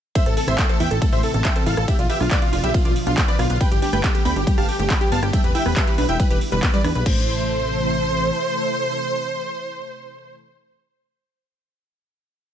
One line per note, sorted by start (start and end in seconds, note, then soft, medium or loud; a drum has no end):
0.15 1.86 A2 medium
0.15 1.86 C3 medium
0.15 1.86 E3 medium
0.15 0.22 A3 medium
0.15 1.86 C4 medium
0.15 1.86 E4 medium
0.15 0.23 C5 medium
0.15 0.23 E5 loud
0.15 0.23 E5 medium
0.15 kick loud
0.15 closed hi-hat medium
0.15 ride medium
0.26 0.34 A1 medium
0.26 0.34 A4 medium
0.26 0.30 C5 medium
0.26 closed hi-hat medium
0.37 0.45 A4 medium
0.37 0.44 A4 medium
0.37 0.45 A4 medium
0.37 open hi-hat loud
0.48 0.56 A1 medium
0.48 0.52 C4 medium
0.48 0.56 C5 medium
0.48 0.56 E5 medium
0.48 0.56 E5 loud
0.48 cross-stick medium
0.48 closed hi-hat medium
0.58 0.66 A4 medium
0.58 0.65 E5 loud
0.58 kick loud
0.58 clap loud
0.58 closed hi-hat medium
0.58 ride medium
0.69 0.77 A4 medium
0.69 0.76 C5 loud
0.69 closed hi-hat medium
0.80 0.88 E2 medium
0.80 0.87 E4 medium
0.80 0.88 E5 medium
0.80 0.88 G5 medium
0.80 0.88 G5 loud
0.80 open hi-hat loud
0.91 0.99 A1 medium
0.91 0.95 A4 medium
0.91 0.99 A4 medium
0.91 closed hi-hat medium
1.02 1.08 A3 medium
1.02 1.10 A4 medium
1.02 kick loud
1.02 closed hi-hat medium
1.02 ride medium
1.12 1.21 A1 medium
1.12 1.19 C5 loud
1.12 1.20 C5 medium
1.12 1.20 E5 medium
1.12 open hi-hat medium
1.23 1.31 A4 medium
1.23 open hi-hat loud
1.34 1.42 A1 medium
1.34 1.38 C4 medium
1.34 1.42 A4 medium
1.34 closed hi-hat medium
1.45 1.52 E5 loud
1.45 1.53 E5 medium
1.45 1.53 G5 medium
1.45 kick loud
1.45 clap loud
1.45 closed hi-hat medium
1.45 ride medium
1.56 1.64 A4 medium
1.56 1.62 C5 loud
1.56 closed hi-hat medium
1.66 1.75 A1 medium
1.66 1.73 E4 medium
1.66 1.74 A4 medium
1.66 1.74 F5 medium
1.66 open hi-hat loud
1.77 1.85 A1 medium
1.77 1.81 A4 medium
1.77 1.85 A4 medium
1.77 cross-stick medium
1.77 closed hi-hat medium
1.88 3.59 B2 medium
1.88 7.02 D3 medium
1.88 3.59 F3 medium
1.88 1.95 B3 medium
1.88 3.59 D4 medium
1.88 3.59 F4 medium
1.88 1.96 G4 medium
1.88 1.96 E5 medium
1.88 kick loud
1.88 closed hi-hat medium
1.88 ride medium
1.99 2.07 B1 medium
1.99 2.07 F4 medium
1.99 2.03 D5 medium
1.99 closed hi-hat medium
2.09 2.18 G4 medium
2.09 2.16 B4 medium
2.09 2.17 E5 medium
2.09 2.18 E5 medium
2.09 open hi-hat loud
2.20 2.29 B1 medium
2.20 2.24 D4 medium
2.20 2.28 F4 medium
2.20 cross-stick medium
2.20 open hi-hat medium
2.31 2.39 B4 medium
2.31 2.39 D5 medium
2.31 2.38 F5 loud
2.31 kick loud
2.31 clap loud
2.31 closed hi-hat medium
2.31 ride medium
2.42 2.50 F4 medium
2.42 2.49 D5 loud
2.42 closed hi-hat medium
2.53 2.61 F1 medium
2.53 2.59 F4 medium
2.53 2.61 F4 medium
2.53 open hi-hat loud
2.63 2.72 B1 medium
2.63 2.72 G4 medium
2.63 2.68 B4 medium
2.63 2.71 E5 loud
2.63 2.72 E5 medium
2.63 closed hi-hat medium
2.74 2.81 B3 medium
2.74 2.82 F4 medium
2.74 kick loud
2.74 closed hi-hat medium
2.74 ride medium
2.85 2.93 B1 medium
2.85 2.93 F4 medium
2.85 2.92 D5 loud
2.85 closed hi-hat medium
2.96 open hi-hat loud
3.07 3.15 B1 medium
3.07 3.11 D4 medium
3.07 3.15 F4 medium
3.07 closed hi-hat medium
3.17 3.25 F4 medium
3.17 3.24 F5 loud
3.17 kick loud
3.17 clap loud
3.17 closed hi-hat medium
3.17 ride medium
3.28 3.36 B4 medium
3.28 3.35 D5 loud
3.28 3.36 D5 medium
3.28 3.36 D5 loud
3.28 closed hi-hat medium
3.39 3.47 B1 loud
3.39 3.46 F4 medium
3.39 3.47 F4 medium
3.39 cross-stick medium
3.39 open hi-hat loud
3.50 3.58 B1 medium
3.50 3.58 F4 medium
3.50 3.54 B4 medium
3.50 closed hi-hat medium
3.61 7.03 G3 medium
3.61 3.67 G3 medium
3.61 5.32 A3 medium
3.61 7.02 B3 medium
3.61 7.02 G4 loud
3.61 3.69 B4 medium
3.61 3.69 G5 loud
3.61 kick loud
3.61 closed hi-hat medium
3.61 ride medium
3.71 3.80 G1 medium
3.71 3.79 G4 medium
3.71 3.76 G4 medium
3.71 3.79 G4 medium
3.71 closed hi-hat medium
3.82 3.89 D4 medium
3.82 3.90 G4 medium
3.82 open hi-hat loud
3.93 4.01 G1 medium
3.93 3.97 A3 medium
3.93 4.01 B4 medium
3.93 4.01 G5 loud
3.93 4.01 G5 medium
3.93 cross-stick medium
3.93 closed hi-hat medium
4.04 4.12 G4 medium
4.04 4.11 A4 loud
4.04 kick loud
4.04 clap loud
4.04 closed hi-hat medium
4.04 ride medium
4.14 4.22 G4 medium
4.14 4.21 G4 loud
4.14 4.23 G4 medium
4.14 closed hi-hat medium
4.25 4.34 D2 medium
4.25 4.32 B3 medium
4.25 4.33 G5 medium
4.25 4.33 B5 loud
4.25 open hi-hat loud
4.36 4.44 G1 medium
4.36 4.40 D4 medium
4.36 4.44 G4 medium
4.36 closed hi-hat medium
4.47 4.54 G3 medium
4.47 4.55 G4 medium
4.47 kick loud
4.47 closed hi-hat medium
4.47 ride medium
4.58 4.66 G1 medium
4.58 4.65 G4 loud
4.58 4.66 F5 medium
4.58 4.66 A5 medium
4.58 open hi-hat medium
4.69 4.76 G4 medium
4.69 open hi-hat loud
4.79 4.88 G1 medium
4.79 4.83 A3 medium
4.79 4.87 G4 medium
4.79 closed hi-hat medium
4.90 4.97 A4 loud
4.90 4.98 G5 medium
4.90 4.98 B5 medium
4.90 kick loud
4.90 clap loud
4.90 closed hi-hat medium
4.90 ride medium
5.01 5.09 G4 medium
5.01 5.08 G4 loud
5.01 closed hi-hat medium
5.12 5.20 G1 medium
5.12 5.19 B3 medium
5.12 5.20 F5 medium
5.12 5.20 A5 loud
5.12 5.20 A5 medium
5.12 open hi-hat loud
5.22 5.31 G1 medium
5.22 5.27 D4 medium
5.22 5.30 G4 medium
5.22 5.31 G4 medium
5.22 cross-stick medium
5.22 closed hi-hat medium
5.33 5.40 G3 medium
5.33 7.04 E4 medium
5.33 5.41 E5 medium
5.33 5.41 G5 medium
5.33 kick loud
5.33 closed hi-hat medium
5.33 ride medium
5.44 5.52 E1 medium
5.44 5.48 G4 medium
5.44 5.52 B4 medium
5.44 closed hi-hat medium
5.55 5.62 E4 medium
5.55 5.63 E5 medium
5.55 5.63 G5 loud
5.55 5.63 G5 medium
5.55 open hi-hat loud
5.66 5.74 E1 medium
5.66 5.70 B3 medium
5.66 5.74 B4 medium
5.66 cross-stick medium
5.66 open hi-hat medium
5.76 5.84 G4 medium
5.76 5.83 B4 loud
5.76 5.84 E5 loud
5.76 5.84 E5 medium
5.76 kick loud
5.76 clap loud
5.76 closed hi-hat medium
5.76 ride medium
5.87 5.94 G4 loud
5.87 5.95 B4 medium
5.87 closed hi-hat medium
5.98 6.06 B1 loud
5.98 6.05 D4 medium
5.98 6.06 B4 medium
5.98 open hi-hat loud
6.09 6.17 E1 medium
6.09 6.13 E4 medium
6.09 6.17 E5 medium
6.09 6.17 G5 loud
6.09 closed hi-hat medium
6.20 6.26 G3 medium
6.20 6.28 B4 medium
6.20 kick loud
6.20 closed hi-hat medium
6.20 ride medium
6.30 6.39 E1 medium
6.30 6.37 G4 loud
6.30 6.38 B4 medium
6.30 closed hi-hat medium
6.41 open hi-hat loud
6.52 6.60 E1 medium
6.52 6.62 G3 loud
6.52 6.60 B4 medium
6.52 closed hi-hat medium
6.63 6.70 B3 medium
6.63 6.71 B4 medium
6.63 kick loud
6.63 clap loud
6.63 closed hi-hat medium
6.63 ride medium
6.74 6.78 G3 loud
6.74 6.82 B4 medium
6.74 6.82 D5 loud
6.74 closed hi-hat soft
6.84 6.93 E2 loud
6.84 6.88 D4 loud
6.84 6.92 B4 medium
6.84 cross-stick medium
6.84 open hi-hat loud
6.95 7.03 B1 medium
6.95 7.03 B4 medium
6.95 7.02 B4 medium
6.95 7.03 B4 medium
6.95 closed hi-hat medium
7.06 10.35 C3 medium
7.06 10.35 E3 medium
7.06 7.26 A3 medium
7.06 10.35 A3 medium
7.06 10.35 E4 medium
7.06 10.35 A4 loud
7.06 10.35 C5 loud
7.06 kick loud
7.06 crash medium